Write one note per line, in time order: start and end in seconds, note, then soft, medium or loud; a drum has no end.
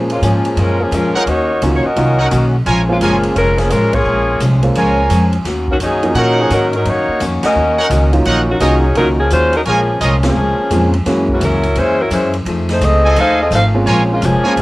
0.00 0.11 A#2 soft
0.00 0.21 A#2 medium
0.00 0.11 F3 soft
0.00 0.85 F3 soft
0.00 0.12 G#3 soft
0.00 0.85 A#3 soft
0.00 0.12 C#4 soft
0.00 0.85 C#4 soft
0.00 0.85 G#4 medium
0.00 0.85 C5 soft
0.10 0.22 G#3 medium
0.10 0.22 A#3 medium
0.10 0.23 C#4 medium
0.10 0.23 F4 medium
0.10 ride soft
0.22 0.56 G#2 medium
0.22 0.46 A#2 medium
0.22 0.47 F3 medium
0.22 0.56 F3 medium
0.22 0.47 G#3 medium
0.22 0.56 A#3 medium
0.22 0.56 C#4 medium
0.22 0.47 C#4 medium
0.22 0.56 G#4 medium
0.22 hi-hat pedal medium
0.22 ride medium
0.45 ride soft
0.56 0.91 F#2 medium
0.56 0.81 A#2 soft
0.56 0.81 F3 soft
0.56 0.80 G#3 medium
0.56 0.82 G#3 soft
0.56 0.80 C#4 medium
0.56 0.82 C#4 soft
0.56 0.80 F4 medium
0.56 0.80 A#4 medium
0.56 ride medium
0.81 0.93 F3 medium
0.81 0.93 A#3 medium
0.81 0.92 C#4 medium
0.81 0.93 G#4 medium
0.91 1.13 F2 medium
0.91 1.16 A#2 medium
0.91 1.16 F3 soft
0.91 1.16 G#3 medium
0.91 1.14 G#3 medium
0.91 1.14 C#4 medium
0.91 1.17 C#4 medium
0.91 1.14 F4 medium
0.91 1.14 A#4 medium
0.91 hi-hat pedal medium
0.91 ride medium
1.15 1.27 G#3 medium
1.15 1.26 C#4 medium
1.15 1.23 D#4 medium
1.15 1.26 F4 medium
1.15 1.23 A#4 medium
1.15 1.27 A#4 medium
1.15 1.23 C#5 medium
1.15 1.23 F#5 medium
1.15 muted upright bass stroke soft
1.26 1.61 D#2 medium
1.26 1.50 D#3 soft
1.26 1.51 A#3 soft
1.26 1.63 A#3 medium
1.26 1.51 C#4 soft
1.26 1.62 D#4 medium
1.26 1.62 F#4 medium
1.26 1.52 F#4 soft
1.26 1.62 C#5 medium
1.26 ride medium
1.62 1.83 C#2 medium
1.62 1.86 D#3 medium
1.62 1.82 F#3 medium
1.62 1.86 A#3 medium
1.62 1.83 A#3 medium
1.62 1.83 C#4 medium
1.62 1.86 C#4 medium
1.62 1.83 D#4 medium
1.62 1.83 F4 medium
1.62 1.86 F#4 medium
1.62 hi-hat pedal soft
1.62 ride medium
1.75 1.84 C#5 medium
1.84 2.54 C#4 medium
1.84 2.54 F#4 medium
1.84 2.54 A#4 medium
1.84 2.54 D#5 medium
1.84 muted upright bass stroke soft
1.96 2.30 C2 medium
1.96 2.20 D#3 soft
1.96 2.17 F#3 medium
1.96 2.17 A#3 soft
1.96 2.21 A#3 soft
1.96 2.17 C#4 soft
1.96 2.21 C#4 soft
1.96 2.17 D#4 medium
1.96 2.17 F4 medium
1.96 2.22 F#4 soft
1.96 ride medium
2.19 2.28 D#4 medium
2.19 2.27 A#4 medium
2.19 2.27 C#5 medium
2.19 2.28 F#5 medium
2.30 2.65 B1 medium
2.30 2.55 D#3 medium
2.30 2.55 A#3 medium
2.30 2.55 C#4 medium
2.30 2.55 F#4 medium
2.30 hi-hat pedal soft
2.30 ride medium
2.66 3.00 A#1 medium
2.66 2.90 A#2 soft
2.66 2.91 F3 soft
2.66 2.91 G#3 soft
2.66 2.91 C#4 medium
2.66 2.82 F4 medium
2.66 2.82 A#4 medium
2.66 2.82 C#5 medium
2.66 2.82 G#5 medium
2.66 ride medium
2.89 3.34 G#3 medium
2.89 2.96 G#3 medium
2.89 3.34 A#3 medium
2.89 2.96 A#3 medium
2.89 3.34 C#4 soft
2.89 2.96 C#4 medium
2.89 3.34 F4 medium
2.89 2.96 F4 medium
2.89 3.34 C5 medium
3.01 3.35 F#1 medium
3.01 3.25 A#2 medium
3.01 3.25 F3 medium
3.01 3.34 F3 medium
3.01 3.25 G#3 medium
3.01 3.34 A#3 medium
3.01 3.34 C#4 medium
3.01 3.26 C#4 medium
3.01 3.17 F4 medium
3.01 3.34 G#4 medium
3.01 3.17 A#4 medium
3.01 3.17 C#5 medium
3.01 3.17 G#5 medium
3.01 hi-hat pedal medium
3.01 ride medium
3.23 ride soft
3.36 3.70 F1 medium
3.36 3.60 A#2 soft
3.36 3.60 F3 soft
3.36 3.57 G#3 medium
3.36 3.61 G#3 soft
3.36 3.56 C#4 medium
3.36 3.61 C#4 soft
3.36 3.57 F4 medium
3.36 3.57 A#4 medium
3.36 ride medium
3.57 3.70 F3 medium
3.57 3.71 A#3 medium
3.57 3.69 C#4 medium
3.57 3.71 G#4 medium
3.57 snare soft
3.57 ride soft
3.70 4.05 A1 medium
3.70 3.95 A#2 medium
3.70 3.95 F3 medium
3.70 3.93 G#3 medium
3.70 3.95 G#3 medium
3.70 3.93 C#4 medium
3.70 3.95 C#4 medium
3.70 3.92 F4 medium
3.70 3.93 A#4 medium
3.70 hi-hat pedal medium
3.70 ride medium
3.93 4.41 A#3 medium
3.93 4.41 F4 medium
3.93 4.41 G#4 medium
3.93 4.41 C#5 medium
3.93 kick medium
3.93 ride medium
4.05 4.40 A#1 medium
4.05 4.29 A#2 soft
4.05 4.30 F3 soft
4.05 4.30 G#3 soft
4.05 4.30 C#4 soft
4.40 4.74 C2 medium
4.40 4.64 A#2 medium
4.40 4.65 F3 medium
4.40 4.65 G#3 medium
4.40 4.65 C#4 medium
4.40 hi-hat pedal medium
4.40 ride medium
4.62 5.08 G#3 medium
4.62 5.08 A#3 soft
4.62 5.08 C#4 soft
4.62 5.08 F4 medium
4.62 5.08 C5 soft
4.62 ride soft
4.75 5.09 C#2 medium
4.75 4.99 A#2 soft
4.75 5.00 F3 soft
4.75 5.00 G#3 medium
4.75 5.01 C#4 medium
4.75 5.29 F4 medium
4.75 5.29 A#4 medium
4.75 5.29 C#5 medium
4.75 5.29 G#5 medium
4.75 ride medium
5.10 5.44 F2 medium
5.10 5.35 A#2 medium
5.10 5.35 F3 medium
5.10 5.35 G#3 medium
5.10 5.35 C#4 medium
5.10 hi-hat pedal medium
5.10 ride medium
5.33 ride soft
5.45 5.79 D#2 medium
5.45 5.69 D#3 soft
5.45 5.69 A#3 soft
5.45 5.70 C#4 soft
5.45 5.70 F#4 soft
5.45 snare soft
5.45 ride medium
5.68 5.75 D#3 medium
5.68 5.75 A#3 medium
5.68 5.75 C#4 medium
5.68 5.75 F#4 medium
5.68 kick soft
5.80 6.14 F#2 medium
5.80 6.04 D#3 soft
5.80 6.14 F#3 medium
5.80 6.05 A#3 medium
5.80 6.05 C#4 medium
5.80 6.14 C#4 medium
5.80 6.14 D#4 medium
5.80 6.05 F#4 medium
5.80 6.14 G#4 medium
5.80 hi-hat pedal soft
5.80 ride medium
6.03 6.48 F3 medium
6.03 6.48 F#3 medium
6.03 6.48 A#3 medium
6.03 6.48 C#4 medium
6.03 6.48 D#4 medium
6.03 ride soft
6.15 6.49 A#2 medium
6.15 6.39 D#3 soft
6.15 6.39 F#3 medium
6.15 6.40 A#3 soft
6.15 6.40 C#4 soft
6.15 6.39 C#4 medium
6.15 6.68 D#4 medium
6.15 6.39 D#4 medium
6.15 6.40 F#4 soft
6.15 6.68 A#4 medium
6.15 6.39 A#4 medium
6.15 6.69 C#5 medium
6.15 6.68 F#5 medium
6.15 ride medium
6.40 6.52 F3 medium
6.40 6.52 A#3 medium
6.40 6.51 C#4 medium
6.40 6.52 G#4 medium
6.50 6.84 G#2 medium
6.50 6.74 D#3 medium
6.50 6.72 F#3 medium
6.50 6.75 A#3 soft
6.50 6.75 C#4 medium
6.50 6.72 C#4 medium
6.50 6.72 D#4 medium
6.50 6.75 F#4 medium
6.50 6.72 A#4 medium
6.50 hi-hat pedal soft
6.50 ride medium
6.73 6.86 F#3 medium
6.73 6.86 C#4 medium
6.73 6.86 D#4 medium
6.73 6.86 A#4 medium
6.73 ride soft
6.85 7.06 F#2 medium
6.85 7.09 D#3 soft
6.85 7.10 A#3 soft
6.85 7.22 A#3 medium
6.85 7.10 C#4 soft
6.85 7.22 D#4 medium
6.85 7.10 F#4 soft
6.85 7.22 F#4 medium
6.85 7.22 C#5 medium
6.85 ride soft
7.08 muted upright bass stroke soft
7.19 7.41 F2 medium
7.19 7.44 D#3 medium
7.19 7.44 A#3 medium
7.19 7.44 C#4 medium
7.19 7.45 F#4 medium
7.19 hi-hat pedal medium
7.19 ride medium
7.43 8.10 C#4 medium
7.43 8.09 F#4 medium
7.43 8.10 A#4 medium
7.43 8.10 D#5 medium
7.43 muted upright bass stroke soft
7.43 snare medium
7.43 ride medium
7.54 7.89 D#2 medium
7.54 7.79 D#3 soft
7.54 7.79 A#3 soft
7.54 7.79 C#4 soft
7.54 7.80 F#4 soft
7.79 7.87 D#4 medium
7.79 7.87 A#4 medium
7.79 7.87 C#5 medium
7.79 7.87 F#5 medium
7.89 8.24 C#2 medium
7.89 8.14 D#3 medium
7.89 8.14 A#3 medium
7.89 8.15 C#4 medium
7.89 8.15 F#4 medium
7.89 hi-hat pedal medium
7.89 ride medium
8.13 8.58 F#3 medium
8.13 8.58 A#3 medium
8.13 8.58 C#4 medium
8.13 8.58 D#4 medium
8.13 8.58 F4 medium
8.13 ride soft
8.25 8.59 A#1 medium
8.25 8.49 D#3 soft
8.25 8.49 A#3 medium
8.25 8.50 C#4 soft
8.25 8.41 D#4 medium
8.25 8.50 F#4 medium
8.25 8.41 A#4 medium
8.25 8.41 C#5 medium
8.25 8.41 F#5 medium
8.25 ride medium
8.48 8.60 D#3 medium
8.48 8.60 A#3 medium
8.48 8.59 C#4 medium
8.48 8.60 F#4 medium
8.60 8.95 C2 medium
8.60 8.84 D#3 medium
8.60 8.96 F#3 medium
8.60 8.81 F#3 medium
8.60 8.84 A#3 medium
8.60 8.81 A#3 medium
8.60 8.95 C#4 medium
8.60 8.81 C#4 medium
8.60 8.85 C#4 medium
8.60 8.95 D#4 medium
8.60 8.76 D#4 medium
8.60 8.81 D#4 medium
8.60 8.81 F4 medium
8.60 8.85 F#4 medium
8.60 8.96 G#4 medium
8.60 8.76 A#4 medium
8.60 8.76 C#5 medium
8.60 8.76 D#5 medium
8.60 hi-hat pedal medium
8.60 ride medium
8.95 9.30 C#2 medium
8.95 9.20 D#3 soft
8.95 9.16 F#3 soft
8.95 9.07 F#3 medium
8.95 9.16 A#3 soft
8.95 9.20 A#3 soft
8.95 9.16 C#4 soft
8.95 9.06 C#4 medium
8.95 9.20 C#4 soft
8.95 9.16 D#4 soft
8.95 9.06 D#4 medium
8.95 9.16 F4 medium
8.95 9.21 F#4 soft
8.95 9.06 A#4 medium
8.95 ride medium
9.19 9.30 F3 medium
9.19 9.30 A#3 medium
9.19 9.30 C#4 medium
9.19 9.30 G#4 medium
9.30 9.65 D#2 medium
9.30 9.55 D#3 medium
9.30 9.53 G#3 medium
9.30 9.55 A#3 medium
9.30 9.52 C#4 medium
9.30 9.55 C#4 medium
9.30 9.52 F4 medium
9.30 9.55 F#4 medium
9.30 9.52 C5 medium
9.30 hi-hat pedal soft
9.30 ride medium
9.53 9.60 F#3 medium
9.53 9.60 C#4 medium
9.53 9.60 D#4 medium
9.53 9.60 A#4 medium
9.53 ride soft
9.65 10.00 A#1 medium
9.65 9.89 A#2 soft
9.65 9.90 F3 soft
9.65 9.99 F3 medium
9.65 9.90 G#3 soft
9.65 9.99 A#3 medium
9.65 9.99 C#4 medium
9.65 9.91 C#4 soft
9.65 9.81 F4 medium
9.65 9.99 G#4 medium
9.65 9.81 A#4 medium
9.65 9.81 C#5 medium
9.65 9.81 G#5 medium
9.65 ride medium
10.00 10.35 C2 medium
10.00 10.25 A#2 medium
10.00 10.25 F3 soft
10.00 10.25 G#3 medium
10.00 10.26 C#4 medium
10.00 10.16 F4 medium
10.00 10.16 A#4 medium
10.00 10.16 C#5 medium
10.00 10.16 D#5 medium
10.00 hi-hat pedal medium
10.00 ride medium
10.23 10.90 F3 medium
10.23 10.35 G#3 soft
10.23 10.35 A#3 soft
10.23 10.90 A#3 medium
10.23 10.35 C4 soft
10.23 10.35 C#4 soft
10.23 10.91 C#4 medium
10.23 10.35 F4 medium
10.23 10.90 G#4 medium
10.23 snare medium
10.23 ride medium
10.35 10.57 C#2 medium
10.35 10.59 A#2 soft
10.35 10.60 F3 soft
10.35 10.60 G#3 soft
10.35 10.60 C#4 soft
10.58 muted upright bass stroke soft
10.70 11.05 F2 medium
10.70 10.94 A#2 medium
10.70 10.95 F3 medium
10.70 10.91 G#3 soft
10.70 10.95 G#3 medium
10.70 10.91 A#3 soft
10.70 10.91 C4 soft
10.70 10.91 C#4 soft
10.70 10.95 C#4 medium
10.70 10.92 F4 soft
10.70 hi-hat pedal soft
10.70 ride medium
10.94 ride soft
11.05 11.29 F#2 soft
11.05 11.40 F#2 medium
11.05 11.30 E3 medium
11.05 11.59 G#3 medium
11.05 11.59 A#3 soft
11.05 11.30 A#3 soft
11.05 11.59 C#4 medium
11.05 11.31 C#4 soft
11.05 11.59 E4 soft
11.05 11.59 F#4 medium
11.05 snare soft
11.05 ride medium
11.29 11.42 E3 medium
11.29 11.42 A#3 medium
11.29 11.42 C#4 medium
11.29 11.42 F#4 medium
11.29 kick soft
11.40 11.75 C#2 medium
11.40 11.65 F#2 medium
11.40 11.65 E3 medium
11.40 11.76 F#3 medium
11.40 11.66 A#3 medium
11.40 11.66 C#4 medium
11.40 11.76 C#4 medium
11.40 11.76 E4 medium
11.40 11.75 A#4 medium
11.40 hi-hat pedal soft
11.40 ride medium
11.63 ride soft
11.75 12.10 E2 medium
11.75 12.00 F#2 soft
11.75 12.01 E3 soft
11.75 11.99 G#3 medium
11.75 12.01 A#3 soft
11.75 11.99 C#4 medium
11.75 12.01 C#4 soft
11.75 11.99 E4 medium
11.75 11.99 C5 loud
11.75 ride medium
12.00 12.12 F#3 medium
12.00 12.10 C#4 medium
12.00 12.10 E4 medium
12.00 12.12 A#4 medium
12.10 12.45 F#2 medium
12.10 12.35 F#2 medium
12.10 12.35 E3 medium
12.10 12.32 G#3 medium
12.10 12.36 A#3 medium
12.10 12.32 C#4 medium
12.10 12.36 C#4 medium
12.10 12.32 E4 medium
12.10 12.32 C5 medium
12.10 hi-hat pedal soft
12.10 ride medium
12.33 ride soft
12.45 12.80 F2 medium
12.45 12.70 F3 soft
12.45 12.71 A3 soft
12.45 12.71 D#4 medium
12.45 12.71 G#4 medium
12.45 ride medium
12.69 12.81 A3 medium
12.69 12.82 D#4 medium
12.69 12.82 G#4 medium
12.69 12.81 C5 medium
12.69 snare soft
12.69 ride soft
12.81 13.15 C#2 medium
12.81 13.05 F3 medium
12.81 13.06 A3 medium
12.81 13.18 C4 medium
12.81 13.06 D#4 medium
12.81 13.17 G#4 medium
12.81 13.06 G#4 medium
12.81 13.17 A4 medium
12.81 13.17 D#5 medium
12.81 hi-hat pedal soft
12.81 ride medium
13.04 13.49 F4 medium
13.04 13.49 A4 medium
13.04 13.49 D#5 medium
13.04 13.49 G#5 medium
13.16 13.50 D#2 medium
13.16 13.41 F3 soft
13.16 13.41 A3 soft
13.16 13.41 D#4 soft
13.16 13.39 D#4 medium
13.16 13.41 G#4 medium
13.16 13.39 A4 medium
13.16 13.39 C5 medium
13.16 13.39 F5 loud
13.16 ride medium
13.41 13.52 C4 medium
13.41 13.52 G#4 medium
13.41 13.52 A4 medium
13.41 13.52 D#5 medium
13.51 13.85 G#1 medium
13.51 13.76 F3 medium
13.51 13.76 A3 medium
13.51 13.76 D#4 medium
13.51 13.63 D#4 medium
13.51 13.77 G#4 medium
13.51 13.63 A4 medium
13.51 13.63 C5 medium
13.51 13.63 F5 medium
13.51 hi-hat pedal soft
13.51 ride medium
13.74 14.20 G#3 medium
13.74 14.20 A#3 medium
13.74 14.20 C4 medium
13.74 14.20 C#4 medium
13.74 14.20 F4 medium
13.86 14.21 A#1 medium
13.86 14.10 A#2 soft
13.86 14.11 F3 medium
13.86 14.11 G#3 medium
13.86 14.12 C#4 medium
13.86 14.02 F4 medium
13.86 14.02 A#4 medium
13.86 14.02 C#5 medium
13.86 14.02 G#5 medium
13.86 ride medium
14.11 14.22 G#3 medium
14.11 14.22 A#3 medium
14.11 14.22 C#4 medium
14.11 14.22 F4 medium
14.21 14.43 F1 medium
14.21 14.46 A#2 medium
14.21 14.47 F3 medium
14.21 14.58 F3 medium
14.21 14.47 G#3 medium
14.21 14.58 A#3 medium
14.21 14.58 C#4 medium
14.21 14.47 C#4 medium
14.21 14.58 G#4 medium
14.21 hi-hat pedal medium
14.21 ride medium
14.44 14.62 G#3 medium
14.44 14.62 A#3 medium
14.44 14.62 C#4 medium
14.44 14.53 F4 medium
14.44 14.62 F4 medium
14.44 14.53 A#4 medium
14.44 14.62 C5 medium
14.44 14.53 C#5 medium
14.44 14.53 G#5 medium
14.44 muted upright bass stroke soft
14.56 14.62 G#1 medium
14.56 14.62 A#2 soft
14.56 14.62 F3 soft
14.56 14.62 G#3 soft
14.56 ride medium